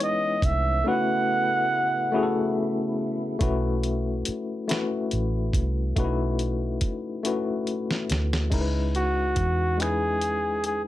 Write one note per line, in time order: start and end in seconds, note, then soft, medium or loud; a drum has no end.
0.00 0.82 E3 medium
0.00 0.87 G#3 medium
0.00 3.36 B3 medium
0.00 0.80 C#4 medium
0.00 0.86 C#4 medium
0.00 0.86 D#4 medium
0.00 0.87 E4 medium
0.00 0.87 B4 medium
0.00 0.54 C#5 medium
0.00 0.47 D#5 medium
0.00 closed hi-hat soft
0.42 0.82 C2 medium
0.42 0.90 E5 medium
0.42 kick medium
0.42 closed hi-hat soft
0.84 3.38 C#3 medium
0.84 1.80 A3 medium
0.84 3.38 A3 medium
0.84 1.80 C#4 medium
0.84 0.92 D#4 medium
0.84 3.38 E4 medium
0.84 1.81 F#4 medium
0.84 1.82 B4 medium
0.88 2.57 F#5 loud
0.93 1.84 E4 medium
2.12 3.07 A3 medium
2.12 3.08 C#4 medium
2.12 3.08 E4 medium
2.12 3.09 F#4 medium
2.12 2.21 G#4 medium
2.23 3.13 A4 loud
3.39 4.22 B1 medium
3.39 4.35 A3 medium
3.39 4.35 C#4 medium
3.39 4.36 E4 medium
3.39 4.36 F#4 medium
3.39 4.37 B4 medium
3.39 kick loud
3.39 closed hi-hat medium
3.83 closed hi-hat soft
4.25 muted fingered electric bass stroke soft
4.25 closed hi-hat medium
4.68 5.63 A3 medium
4.68 5.63 C#4 medium
4.68 5.64 E4 medium
4.68 5.64 F#4 medium
4.68 5.65 B4 medium
4.68 snare loud
4.68 closed hi-hat medium
5.11 5.50 A1 medium
5.11 closed hi-hat soft
5.53 5.92 C2 medium
5.53 kick medium
5.53 closed hi-hat medium
5.96 6.78 B1 medium
5.96 6.91 A3 medium
5.96 6.91 C#4 medium
5.96 6.03 D#4 medium
5.96 6.92 F#4 medium
5.96 6.93 B4 medium
5.96 kick loud
5.96 closed hi-hat medium
6.04 6.95 E4 medium
6.39 closed hi-hat soft
6.81 kick medium
6.81 closed hi-hat medium
7.23 8.18 A3 medium
7.23 8.19 C#4 medium
7.23 8.19 E4 medium
7.23 8.20 F#4 medium
7.23 8.20 B4 medium
7.23 closed hi-hat medium
7.67 closed hi-hat soft
7.91 snare medium
8.10 8.48 D2 medium
8.10 snare medium
8.10 closed hi-hat medium
8.33 snare medium
8.50 9.33 C#2 medium
8.50 9.46 G#3 medium
8.50 9.46 C#4 medium
8.50 9.47 D#4 medium
8.50 9.47 E4 medium
8.50 8.59 A#4 medium
8.50 kick medium
8.50 closed hi-hat medium
8.50 crash medium
8.61 9.51 B4 medium
8.95 9.83 F#4 medium
8.95 closed hi-hat soft
9.36 10.88 E2 medium
9.36 kick medium
9.36 closed hi-hat medium
9.77 10.73 G#3 medium
9.77 10.74 C#4 medium
9.77 10.74 D#4 medium
9.77 10.75 E4 medium
9.77 10.65 G#4 loud
9.77 closed hi-hat medium
9.82 10.75 B4 medium
9.82 finger snap medium
10.21 closed hi-hat soft
10.64 10.82 G#4 medium
10.64 closed hi-hat medium